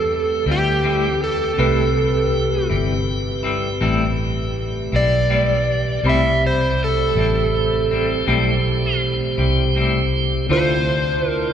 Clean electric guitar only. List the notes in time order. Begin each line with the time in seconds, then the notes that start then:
0.46 G3 C4 E4
0.83 A2 G3 C4 E4
1.57 A2 G3 C4 E4
2.70 G3 C4 E4
3.43 G3 C4 E4
3.81 A2 G3 C4 E4
4.92 G3 C4 E4
5.29 A2 G3 C4 E4
6.04 A2 G3 C4 E4
7.17 G3 C4 E4
7.91 G3 C4 E4
8.27 A2 G3 C4 E4
9.38 G3 C4 E4
9.75 A2 G3 C4 E4
10.49 D3 A3 C4 F4